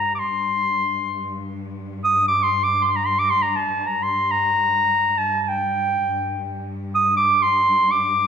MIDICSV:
0, 0, Header, 1, 3, 480
1, 0, Start_track
1, 0, Tempo, 500000
1, 7939, End_track
2, 0, Start_track
2, 0, Title_t, "Clarinet"
2, 0, Program_c, 0, 71
2, 0, Note_on_c, 0, 82, 73
2, 126, Note_off_c, 0, 82, 0
2, 145, Note_on_c, 0, 86, 51
2, 185, Note_on_c, 0, 84, 74
2, 199, Note_off_c, 0, 86, 0
2, 1396, Note_off_c, 0, 84, 0
2, 1962, Note_on_c, 0, 87, 82
2, 2182, Note_off_c, 0, 87, 0
2, 2194, Note_on_c, 0, 86, 74
2, 2338, Note_on_c, 0, 84, 76
2, 2353, Note_off_c, 0, 86, 0
2, 2534, Note_on_c, 0, 86, 80
2, 2548, Note_off_c, 0, 84, 0
2, 2692, Note_off_c, 0, 86, 0
2, 2701, Note_on_c, 0, 84, 62
2, 2732, Note_on_c, 0, 86, 58
2, 2746, Note_off_c, 0, 84, 0
2, 2761, Note_on_c, 0, 84, 71
2, 2775, Note_off_c, 0, 86, 0
2, 2841, Note_on_c, 0, 82, 65
2, 2856, Note_off_c, 0, 84, 0
2, 2939, Note_on_c, 0, 84, 79
2, 2953, Note_off_c, 0, 82, 0
2, 3059, Note_on_c, 0, 86, 86
2, 3073, Note_off_c, 0, 84, 0
2, 3170, Note_on_c, 0, 84, 84
2, 3185, Note_off_c, 0, 86, 0
2, 3283, Note_on_c, 0, 82, 74
2, 3297, Note_off_c, 0, 84, 0
2, 3415, Note_on_c, 0, 81, 65
2, 3429, Note_off_c, 0, 82, 0
2, 3711, Note_on_c, 0, 82, 65
2, 3725, Note_off_c, 0, 81, 0
2, 3867, Note_on_c, 0, 84, 75
2, 3882, Note_off_c, 0, 82, 0
2, 4138, Note_on_c, 0, 82, 76
2, 4153, Note_off_c, 0, 84, 0
2, 4970, Note_on_c, 0, 81, 69
2, 4984, Note_off_c, 0, 82, 0
2, 5201, Note_off_c, 0, 81, 0
2, 5201, Note_on_c, 0, 81, 46
2, 5264, Note_on_c, 0, 79, 72
2, 5278, Note_off_c, 0, 81, 0
2, 6203, Note_off_c, 0, 79, 0
2, 6669, Note_on_c, 0, 87, 85
2, 6869, Note_off_c, 0, 87, 0
2, 6880, Note_on_c, 0, 86, 81
2, 7124, Note_on_c, 0, 84, 86
2, 7138, Note_off_c, 0, 86, 0
2, 7595, Note_on_c, 0, 86, 80
2, 7610, Note_off_c, 0, 84, 0
2, 7939, Note_off_c, 0, 86, 0
2, 7939, End_track
3, 0, Start_track
3, 0, Title_t, "Cello section"
3, 0, Program_c, 1, 48
3, 0, Note_on_c, 1, 43, 59
3, 265, Note_off_c, 1, 43, 0
3, 277, Note_on_c, 1, 43, 55
3, 5763, Note_off_c, 1, 43, 0
3, 5774, Note_on_c, 1, 43, 60
3, 7939, Note_off_c, 1, 43, 0
3, 7939, End_track
0, 0, End_of_file